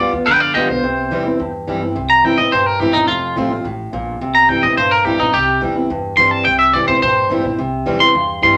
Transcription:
Already playing: D5
0.00 D2 G3 B3 F4
0.13 E2 B3 F4
0.26 F2 D3 B4 G5
0.40 D5 F5
0.54 E2 G3 B3 F4 G4 D#5
0.69 B1 B3 F4 C5
0.83 C2 C3
1.11 E2 E3 G3 C4 E4
1.26 C4 E4
1.40 E2 G2
1.67 G2 E3 G3 C4 E4
1.81 C4 E4
1.95 C2 C3
2.10 A#5
2.24 G2 E3 G3 C4 E4 G5
2.38 A2 C4 E4 D#5
2.52 G2 A#2 C5
2.66 A#4
2.80 A2 E3 G3 C4 E4 G4
2.93 A#2 C4 D#4 E4
3.08 F1 F2 F4
3.36 A1 F3 A3 C4 F4
3.50 C4 F4
3.64 A1 A2
3.93 A#1 A#2
4.21 C2 C3
4.35 A#5
4.49 G2 E3 G3 C4 E4 G5
4.63 A2 C4 E4 D#5
4.77 G2 A#2 C5
4.91 A#4
5.05 A2 E3 G3 C4 E4 G4
5.20 A#2 C4 D#4 E4
5.34 C2 C3 G4
5.61 E2 E3 G3 C4 E4
5.75 C4 E4
5.90 E2 G2
6.17 G2 E3 G3 C4 E4 C6
6.31 A5
6.45 C2 C3 G5
6.59 E5
6.74 G2 E3 G3 C4 E4 D5
6.88 A2 C4 E4 C5
7.02 G2 A#2 C5
7.30 A2 E3 G3 C4 E4
7.45 A#2 C4 E4
7.58 C2 C3
7.86 E2 E3 G3 C4 E4
8.00 C4 E4 C6
8.15 E2 G2
8.42 G2 E3 G3 C4 E4 C6

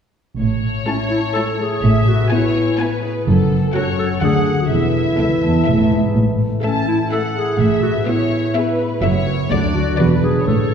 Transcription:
0.38 A1 A2 C#5
0.63 A3
0.87 A3 C#4 E4 E5 A5
1.10 E4 A5
1.34 A3 E4 A4 A5
1.59 A3 G#4
1.82 A1 A2 E5
2.08 B3 F#4
2.30 B3 E4 B4 C#5 G#5
2.55 G#5
2.78 B3 E4 B4 G#5
3.02 G#4
3.26 F#1 F#2 A4
3.51 C#4
3.74 C#4 F#4 A4 C#5 F#5
3.99 A4 F#5
4.21 D2 D3 D4 G#4 A4 F#5
4.46 F#4 A4
4.61 F#4
4.70 E1 E2 E3 E4 E5
4.95 E4
5.18 C#2 B3 A4 B4 E5
5.42 E2 A5
5.66 E1 A2 E3 B3 G#4 E5
5.91 G#2 E4 G#4
6.15 A1 A2
6.39 A3
6.62 A3 C#4 A4 E5 A5
6.87 E4 E5
7.11 A3 A4 E5 F#5
7.35 E4 G#4
7.59 A1 A2 E5
7.82 B3 F#4
8.06 B3 E4 G#4 C#5 E5
8.31 E5
8.54 B3 G#4 B4 E5
8.78 E4
9.02 F#1 F#2 A3 F#4 C#5 E5
9.26 E4 F#4
9.50 D2 D3 A3 D4 F#4 D5
9.74 D4 F#4
9.98 E1 E2 E3 G#3 F#4 B4 D5
10.23 D4 F#4 G#4
10.45 A1 A2 A4 C#5

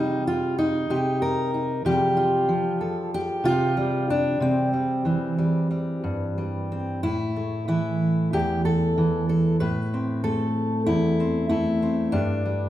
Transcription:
Already playing: C3 G3 D#4 G4
0.27 F4
0.58 D#4
0.90 C3 G4
1.22 A#4
1.54 D#4
1.85 C3 F3 G3 G4
2.17 F4
2.48 F3
2.81 A4
3.14 G4
3.44 C3 F4
3.77 G3
4.10 D4
4.40 C3 C4
4.73 G3
5.05 E3 G3
5.38 G3
5.71 G3
6.04 G2
6.38 G3
6.72 C4
7.03 A2 E4
7.36 A3
7.68 E3 E4
8.33 E2 G4
8.65 A4
8.98 E3
9.29 A4
9.60 A2 B4
9.94 C4
10.24 A3 A4
10.86 E2 E4
11.20 C4
11.49 A3 E4
11.82 C4
12.12 G2 D4
12.45 G3

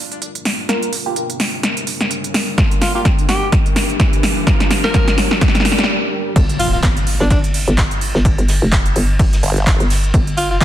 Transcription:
Already playing: G3 D4 F4 A#4, riser
0.12 closed hi-hat
0.22 closed hi-hat
0.35 closed hi-hat
0.45 snare, open hi-hat
0.69 A#3 F4 A#4, snare, closed hi-hat
0.82 closed hi-hat
0.93 open hi-hat
1.06 A#3 F4 G4
1.16 closed hi-hat
1.30 closed hi-hat
1.40 snare, open hi-hat
1.63 snare, closed hi-hat
1.77 closed hi-hat
1.87 open hi-hat
2.01 snare, closed hi-hat
2.11 closed hi-hat
2.24 closed hi-hat
2.34 snare, open hi-hat
2.58 A#3 F4 G4 A4, kick, snare, closed hi-hat
2.71 closed hi-hat
2.81 F4, snare, open hi-hat
2.95 A#3 F4 G4
3.05 kick, snare, closed hi-hat
3.19 closed hi-hat
3.29 G4, snare, open hi-hat
3.52 kick, snare, closed hi-hat
3.66 closed hi-hat
3.76 snare, open hi-hat
3.90 closed hi-hat
4.00 kick, snare, closed hi-hat
4.13 closed hi-hat
4.23 snare, open hi-hat
4.47 A#3 F4 A#4, kick, snare, closed hi-hat
4.60 snare, closed hi-hat
4.71 snare, open hi-hat
4.84 A#3 F4 G4 A#4, snare
4.94 kick, snare, closed hi-hat
5.08 snare, closed hi-hat
5.18 snare, open hi-hat
5.31 snare
5.41 kick, snare, closed hi-hat
5.48 snare
5.55 snare, closed hi-hat
5.60 snare
5.65 snare, open hi-hat
5.72 snare
5.79 snare, closed hi-hat
5.84 snare
6.36 G1 G3 D4 F4 A#4, kick, closed hi-hat, ride, impact
6.49 closed hi-hat
6.60 F4, open hi-hat, ride
6.73 F4, ride
6.83 G1, kick, snare, clap, closed hi-hat, ride
6.97 closed hi-hat
7.07 open hi-hat, ride
7.20 G1 D4, snare
7.30 D4, kick, closed hi-hat, ride
7.44 closed hi-hat
7.54 open hi-hat, ride
7.68 G1, closed hi-hat
7.78 kick, snare, clap, closed hi-hat, ride
7.91 closed hi-hat, ride
8.01 open hi-hat, ride
8.15 G1, snare
8.25 kick, closed hi-hat, ride
8.38 G1, closed hi-hat
8.48 snare, open hi-hat, ride
8.62 F1
8.72 kick, snare, clap, closed hi-hat
8.86 closed hi-hat
8.96 G1, open hi-hat, ride
9.19 kick, closed hi-hat, open hi-hat
9.33 snare, closed hi-hat
9.43 G1, open hi-hat, ride
9.57 closed hi-hat
9.67 kick, snare, clap, closed hi-hat, ride
9.80 G1, closed hi-hat
9.90 snare, open hi-hat, ride
10.04 closed hi-hat
10.14 G1 G4, kick, closed hi-hat, ride
10.27 closed hi-hat
10.37 F4, open hi-hat, ride
10.51 F4, ride
10.60 G1, kick, snare, clap, closed hi-hat, ride

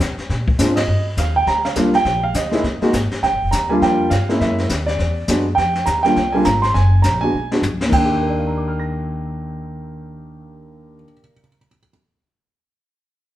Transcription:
0.00 C3, kick, snare
0.17 muted upright bass stroke, snare
0.29 A#2, brush sweep, kick, snare
0.48 kick
0.59 G#2 G#3 C4 D4 F4, kick, snare, hi-hat pedal
0.76 D#5, snare, ride
0.88 G2, brush sweep
1.17 D#2 F5, kick, snare, hi-hat pedal
1.36 G5
1.46 D2 A#5, brush sweep, kick, snare
1.65 F5, snare
1.75 C2 G3 A#3 D4 F4, kick, snare, hi-hat pedal
1.93 G5, snare
2.05 A#1, brush sweep, kick, snare
2.23 F5
2.34 D2 D#5, kick, snare, hi-hat pedal
2.51 G#3 A#3 D#4 E4, snare
2.63 C2, brush sweep, kick, snare
2.81 G#3 A#3 D#4 F#4, muted upright bass stroke, snare
2.93 G#1, kick, snare, hi-hat pedal
3.11 muted upright bass stroke, snare
3.22 C2 G5, brush sweep, kick, snare
3.32 G#1
3.42 F1
3.51 D#2 A#5, kick, snare, hi-hat pedal
3.70 G3 A#3 D4 F4 G#5
3.81 F2 G5, brush sweep, kick, snare
4.10 G2 F5, kick, snare, hi-hat pedal
4.29 G#3 A#3 C#4 E4, snare
4.40 F#2 E5, brush sweep, kick, snare
4.58 snare
4.69 D#2, kick, snare, hi-hat pedal
4.86 D5, snare
4.99 E2, brush sweep, kick, snare
5.28 F#2 G#3 B3 D4 F#4, kick, snare, hi-hat pedal
5.55 F2 G5, brush sweep, kick, snare
5.75 snare
5.86 D#2 A#5, kick, snare, hi-hat pedal
6.03 G3 A#3 D4 F4 G5, snare
6.16 C2, brush sweep, kick, snare
6.32 G3 A#3 D4 F4 G#5
6.45 G#1 A#5, kick, snare, hi-hat pedal
6.62 C6, snare
6.74 F#1 G#5, brush sweep, kick, snare
7.02 A#1 A#5, kick, snare, hi-hat pedal
7.21 G#3 B3 D4 F#4 G#5
7.33 B1
7.52 G#3 B3 D4 F#4, snare
7.62 C#2, floor tom, hi-hat pedal
7.81 D#2, snare
7.89 D#2 D#3, kick, crash
7.93 D4 G5
8.05 G4
8.23 A#4
8.30 D5
8.38 F5
8.47 A#5
8.57 D6
8.68 F6
8.80 A#6

